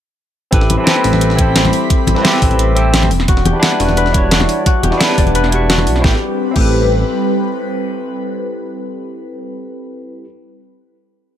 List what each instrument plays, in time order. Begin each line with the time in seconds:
0.51 analog synth bass A1, analog synth pad G3 C4 B5, tine electric piano C4 E4 G4 A4 B4, kick, closed hi-hat
0.61 snare
0.70 analog synth bass A1, closed hi-hat, high conga
0.77 tine electric piano C4 E4 G4 A4 B4
0.84 tine electric piano C4 E4 G4, snare, closed hi-hat
0.89 tine electric piano A4 B4
0.96 snare
1.04 analog synth bass A1, snare, closed hi-hat, open hi-hat
1.13 snare, high conga
1.21 closed hi-hat
1.30 snare
1.35 tine electric piano C4 E4 G4, kick, closed hi-hat
1.40 tine electric piano A4 C5
1.56 snare, closed hi-hat
1.64 snare, high conga
1.73 closed hi-hat, open hi-hat
1.90 kick, closed hi-hat
2.07 analog synth bass A1, closed hi-hat, high conga
2.15 tine electric piano C4 E4 G4 A4 B4, snare
2.21 tine electric piano C4 E4 G4, snare, closed hi-hat
2.26 tine electric piano A4 B4
2.33 snare
2.42 analog synth bass A1, kick, closed hi-hat, open hi-hat
2.51 closed hi-hat, high conga
2.59 closed hi-hat
2.75 tine electric piano C4 E4 G4 A4 C5, closed hi-hat
2.94 snare, closed hi-hat
3.02 snare, high conga
3.11 analog synth bass E1, analog synth pad D4, closed hi-hat, open hi-hat
3.20 snare
3.28 analog synth bass E1, harp F#4, kick, closed hi-hat
3.37 snare
3.45 analog synth bass E1, harp G4, closed hi-hat, high conga
3.53 tine electric piano D4 E4 F#4 G4 B4
3.60 tine electric piano D4 E4 F#5, snare, closed hi-hat
3.64 tine electric piano G3 B4
3.71 snare
3.80 analog synth bass E1, harp F#4, snare, closed hi-hat, open hi-hat
3.89 snare, high conga
3.97 harp B4, closed hi-hat
4.06 snare
4.11 tine electric piano D4 E4 F#4, kick, closed hi-hat
4.16 tine electric piano G3 C#5
4.31 harp F#4, snare, closed hi-hat
4.40 snare, high conga
4.49 closed hi-hat, open hi-hat
4.66 harp F#4, kick, closed hi-hat
4.83 analog synth bass E1, harp G4, closed hi-hat, high conga
4.90 tine electric piano D4 E4 F#4 G4 B4, snare
4.97 tine electric piano D4 E4 F#5, snare, closed hi-hat
5.02 tine electric piano G3 B4
5.10 snare
5.18 analog synth bass E1, harp D5, kick, closed hi-hat, open hi-hat
5.27 closed hi-hat, high conga
5.35 harp B4, closed hi-hat
5.44 snare
5.49 tine electric piano D4 E4 F#4, closed hi-hat
5.54 tine electric piano G3 C#6
5.70 harp F#4, snare, closed hi-hat
5.78 snare, high conga
5.87 analog synth bass B1, closed hi-hat, open hi-hat
5.96 snare
6.00 tine electric piano C4 E4
6.04 analog synth bass A1, analog synth pad G3 C4 B4, harp G4, tine electric piano G4 A4, kick, snare
6.09 tine electric piano B4
6.51 tine electric piano C4 E4
6.56 analog synth bass A1, harp G4, tine electric piano G4 A4, kick, crash
6.61 tine electric piano B4